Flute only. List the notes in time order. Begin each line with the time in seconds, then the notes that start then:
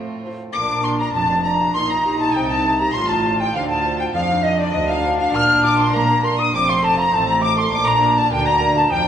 0.54 D6
0.84 C6
1.00 A#5
1.15 A5
1.45 A#5
1.74 C6
1.90 A#5
2.21 A5
2.35 G5
2.49 A5
2.79 A#5
2.94 C6
3.10 A5
3.40 G5
3.54 F5
3.70 A5
4.00 G5
4.14 F5
4.43 D#5
4.59 D5
4.74 D#5
4.90 F5
5.20 F5
5.35 F6
5.65 D6
5.82 C6
5.97 A#5
6.25 C6
6.39 D#6
6.54 D6
6.70 C6
6.84 A5
6.99 A#5
7.14 A5
7.29 A#5
7.42 D6
7.58 C6
7.73 D6
7.88 A#5
8.18 A5
8.32 G5
8.47 A#5
8.76 A5
8.92 G5